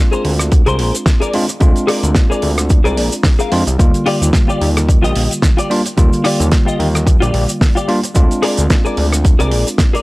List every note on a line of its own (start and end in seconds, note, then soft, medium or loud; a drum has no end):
0.00 1.31 G#3 medium
0.00 1.31 C4 medium
0.00 1.31 D4 medium
0.00 1.31 F4 medium
0.12 0.32 G#4 medium
0.12 0.32 A#4 medium
0.12 0.33 C5 medium
0.12 cabasa soft
0.25 0.63 D2 medium
0.25 open hi-hat loud
0.39 cross-stick medium
0.39 closed hi-hat medium
0.39 cabasa medium
0.51 muted clean electric guitar stroke soft
0.51 kick loud
0.51 closed hi-hat medium
0.51 cabasa medium
0.66 0.81 C2 medium
0.66 0.94 G#4 loud
0.66 0.94 A#4 loud
0.66 0.95 C5 loud
0.66 closed hi-hat soft
0.66 cabasa soft
0.79 0.92 A#1 loud
0.79 open hi-hat loud
0.95 closed hi-hat medium
0.95 cabasa medium
1.06 kick loud
1.06 snare loud
1.06 closed hi-hat medium
1.06 cabasa medium
1.20 1.33 G#4 medium
1.20 1.34 A#4 medium
1.20 1.34 D5 medium
1.20 closed hi-hat medium
1.20 cabasa medium
1.33 1.44 G#3 medium
1.33 1.45 C4 medium
1.33 1.45 D4 medium
1.33 1.45 F4 loud
1.33 open hi-hat loud
1.48 muted clean electric guitar stroke soft
1.48 closed hi-hat medium
1.48 cabasa medium
1.60 1.73 D2 medium
1.60 3.49 G#3 medium
1.60 3.49 C4 medium
1.60 3.49 D4 medium
1.60 3.50 F4 loud
1.60 kick loud
1.60 closed hi-hat medium
1.60 cabasa medium
1.76 closed hi-hat soft
1.76 cabasa soft
1.87 2.09 G#4 loud
1.87 2.10 A#4 loud
1.87 2.10 D5 loud
1.87 cross-stick medium
1.87 open hi-hat loud
2.03 2.13 D2 medium
2.03 closed hi-hat medium
2.03 cabasa medium
2.15 kick loud
2.15 snare loud
2.15 closed hi-hat medium
2.15 cabasa medium
2.30 2.50 G#4 medium
2.30 2.51 A#4 medium
2.30 2.51 D5 medium
2.30 cabasa soft
2.42 2.81 D2 medium
2.42 open hi-hat loud
2.58 cross-stick medium
2.58 closed hi-hat medium
2.58 cabasa medium
2.69 muted clean electric guitar stroke soft
2.69 kick loud
2.69 closed hi-hat medium
2.69 cabasa medium
2.84 2.99 C2 medium
2.84 3.12 G#4 loud
2.84 3.13 A#4 loud
2.84 3.13 D5 loud
2.84 closed hi-hat soft
2.84 cabasa soft
2.97 3.10 A#1 loud
2.97 open hi-hat loud
3.12 closed hi-hat medium
3.12 cabasa medium
3.23 kick loud
3.23 snare loud
3.23 open hi-hat medium
3.23 cabasa medium
3.39 3.52 G#4 medium
3.39 3.52 A#4 medium
3.39 3.52 F5 medium
3.39 closed hi-hat soft
3.39 cabasa medium
3.52 3.64 F2 medium
3.52 3.63 G#3 medium
3.52 3.63 C4 medium
3.52 3.63 D4 medium
3.52 3.63 F4 loud
3.52 open hi-hat loud
3.66 3.77 C2 medium
3.66 muted clean electric guitar stroke soft
3.66 closed hi-hat medium
3.66 cabasa medium
3.78 3.92 D#2 loud
3.78 5.67 D3 medium
3.78 5.67 G3 medium
3.78 5.67 A#3 medium
3.78 5.68 F4 medium
3.78 kick loud
3.78 closed hi-hat medium
3.78 cabasa medium
3.94 closed hi-hat medium
3.94 cabasa medium
4.06 4.27 F4 loud
4.06 4.28 G4 loud
4.06 4.28 D5 loud
4.06 cross-stick medium
4.06 open hi-hat loud
4.21 4.32 D#2 medium
4.21 closed hi-hat medium
4.21 cabasa medium
4.33 kick loud
4.33 snare loud
4.33 closed hi-hat medium
4.33 cabasa medium
4.48 4.68 F4 medium
4.48 4.69 G4 medium
4.48 4.69 D5 medium
4.48 cabasa medium
4.61 4.99 D#2 medium
4.61 open hi-hat loud
4.77 cross-stick medium
4.77 closed hi-hat medium
4.77 cabasa medium
4.87 muted clean electric guitar stroke soft
4.87 kick loud
4.87 closed hi-hat medium
4.87 cabasa medium
5.02 5.13 A#1 medium
5.02 5.30 F4 loud
5.02 5.31 G4 loud
5.02 5.31 D#5 loud
5.02 closed hi-hat medium
5.02 cabasa medium
5.15 5.28 A#1 loud
5.15 open hi-hat loud
5.31 closed hi-hat medium
5.31 cabasa medium
5.42 kick loud
5.42 snare loud
5.42 closed hi-hat medium
5.42 cabasa medium
5.57 5.70 F4 medium
5.57 5.70 G4 medium
5.57 5.71 D5 medium
5.57 closed hi-hat medium
5.57 cabasa medium
5.70 5.81 G3 medium
5.70 5.81 A#3 medium
5.70 5.81 D4 medium
5.70 5.81 F4 loud
5.70 open hi-hat loud
5.85 muted clean electric guitar stroke soft
5.85 closed hi-hat medium
5.85 cabasa medium
5.97 6.10 D#2 loud
5.97 7.86 D3 medium
5.97 7.85 G3 medium
5.97 7.85 A#3 medium
5.97 7.86 F4 medium
5.97 kick loud
5.97 closed hi-hat medium
5.97 cabasa medium
6.13 closed hi-hat soft
6.13 cabasa medium
6.24 6.46 F4 loud
6.24 6.46 G4 loud
6.24 6.46 D5 loud
6.24 cross-stick medium
6.24 open hi-hat loud
6.40 6.50 D#2 medium
6.40 closed hi-hat medium
6.40 cabasa medium
6.52 kick loud
6.52 snare loud
6.52 closed hi-hat medium
6.52 cabasa medium
6.66 6.87 F4 medium
6.66 6.87 G4 medium
6.66 6.87 D#5 medium
6.66 cabasa medium
6.79 7.17 D#2 medium
6.79 open hi-hat loud
6.95 cross-stick medium
6.95 closed hi-hat medium
6.95 cabasa medium
7.06 muted clean electric guitar stroke soft
7.06 kick loud
7.06 closed hi-hat medium
7.06 cabasa medium
7.20 7.32 A#1 medium
7.20 7.48 F4 loud
7.20 7.49 G4 loud
7.20 7.49 D5 loud
7.20 closed hi-hat medium
7.20 cabasa medium
7.34 7.46 A#1 loud
7.34 open hi-hat loud
7.49 closed hi-hat medium
7.49 cabasa medium
7.61 kick loud
7.61 snare loud
7.61 open hi-hat medium
7.61 cabasa medium
7.75 7.88 F4 medium
7.75 7.88 G4 medium
7.75 7.89 D5 loud
7.75 closed hi-hat soft
7.75 cabasa medium
7.88 7.99 G3 medium
7.88 7.99 A#3 medium
7.88 7.99 D4 medium
7.88 7.99 F4 loud
7.88 open hi-hat medium
8.03 muted clean electric guitar stroke soft
8.03 closed hi-hat medium
8.03 cabasa medium
8.14 8.28 D2 medium
8.14 10.02 G#3 medium
8.14 10.02 C4 medium
8.14 10.02 D4 medium
8.14 10.02 F4 loud
8.14 kick loud
8.14 closed hi-hat medium
8.14 cabasa medium
8.31 closed hi-hat medium
8.31 cabasa soft
8.42 8.64 G#4 loud
8.42 8.64 A#4 loud
8.42 8.65 D5 loud
8.42 cross-stick medium
8.42 open hi-hat loud
8.57 8.68 D2 medium
8.57 closed hi-hat medium
8.57 cabasa medium
8.70 kick loud
8.70 snare loud
8.70 closed hi-hat medium
8.70 cabasa medium
8.85 9.05 G#4 medium
8.85 9.05 A#4 medium
8.85 9.06 D5 medium
8.85 cabasa medium
8.97 9.35 D2 medium
8.97 open hi-hat loud
9.12 cross-stick medium
9.12 closed hi-hat medium
9.12 cabasa medium
9.24 muted clean electric guitar stroke soft
9.24 kick loud
9.24 closed hi-hat medium
9.24 cabasa medium
9.39 9.53 C2 medium
9.39 9.67 G#4 loud
9.39 9.67 A#4 loud
9.39 9.68 D5 loud
9.39 closed hi-hat medium
9.39 cabasa soft
9.52 9.64 A#1 loud
9.52 open hi-hat loud
9.67 closed hi-hat medium
9.67 cabasa medium
9.78 kick loud
9.78 snare loud
9.78 closed hi-hat medium
9.78 cabasa medium
9.94 10.02 G#4 medium
9.94 10.02 A#4 medium
9.94 10.02 D5 loud
9.94 closed hi-hat soft
9.94 cabasa soft